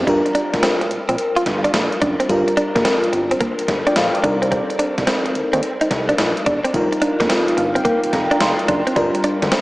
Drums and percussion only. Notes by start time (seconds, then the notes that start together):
0.07 kick, closed hi-hat
0.26 closed hi-hat
0.35 closed hi-hat
0.54 kick, snare, closed hi-hat
0.63 snare, closed hi-hat
0.81 closed hi-hat
0.91 closed hi-hat
1.09 closed hi-hat
1.18 closed hi-hat
1.37 closed hi-hat
1.46 kick, snare, closed hi-hat
1.65 closed hi-hat
1.74 snare, closed hi-hat
1.92 closed hi-hat
2.02 kick, closed hi-hat
2.20 closed hi-hat
2.29 kick, closed hi-hat
2.48 closed hi-hat
2.57 closed hi-hat
2.76 kick, snare, closed hi-hat
2.85 snare, closed hi-hat
3.04 closed hi-hat
3.13 closed hi-hat
3.31 closed hi-hat
3.41 kick, closed hi-hat
3.59 closed hi-hat
3.68 kick, snare, closed hi-hat
3.87 closed hi-hat
3.96 snare, closed hi-hat
4.15 closed hi-hat
4.24 kick, closed hi-hat
4.43 closed hi-hat
4.52 kick, closed hi-hat
4.70 closed hi-hat
4.79 closed hi-hat
4.98 kick, snare, closed hi-hat
5.07 snare, closed hi-hat
5.26 closed hi-hat
5.35 closed hi-hat
5.53 closed hi-hat
5.63 closed hi-hat
5.81 closed hi-hat
5.91 kick, snare, closed hi-hat
6.09 closed hi-hat
6.18 snare, closed hi-hat
6.37 closed hi-hat
6.46 kick, closed hi-hat
6.65 closed hi-hat
6.74 kick, closed hi-hat
6.93 closed hi-hat
7.02 closed hi-hat
7.20 kick, snare, closed hi-hat
7.30 snare, closed hi-hat
7.48 closed hi-hat
7.58 closed hi-hat
7.76 closed hi-hat
7.85 kick, closed hi-hat
8.04 closed hi-hat
8.13 kick, snare, closed hi-hat
8.31 closed hi-hat
8.41 snare, closed hi-hat
8.59 closed hi-hat
8.68 kick, closed hi-hat
8.87 closed hi-hat
8.96 kick, closed hi-hat
9.15 closed hi-hat
9.24 closed hi-hat
9.42 kick, snare, closed hi-hat
9.52 snare, closed hi-hat